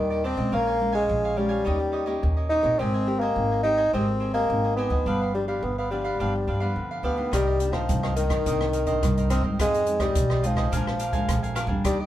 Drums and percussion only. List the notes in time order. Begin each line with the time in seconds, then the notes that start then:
7.33 kick, cross-stick, closed hi-hat
7.60 closed hi-hat
7.73 kick, cross-stick
7.89 kick, closed hi-hat
8.03 cross-stick
8.17 closed hi-hat
8.30 kick, cross-stick, closed hi-hat
8.46 kick, closed hi-hat
8.61 cross-stick
8.73 closed hi-hat
8.87 kick, closed hi-hat
9.03 kick, cross-stick, closed hi-hat
9.17 closed hi-hat
9.30 cross-stick, closed hi-hat
9.43 kick
9.59 kick, cross-stick, closed hi-hat
9.74 closed hi-hat
9.87 closed hi-hat
10.00 kick, cross-stick, closed hi-hat
10.15 kick, closed hi-hat
10.30 cross-stick
10.44 closed hi-hat
10.56 kick, cross-stick
10.72 kick, closed hi-hat
10.87 cross-stick
10.99 closed hi-hat
11.13 kick, closed hi-hat
11.29 kick, cross-stick, closed hi-hat
11.44 closed hi-hat
11.56 cross-stick, closed hi-hat
11.69 kick
11.85 kick, cross-stick, closed hi-hat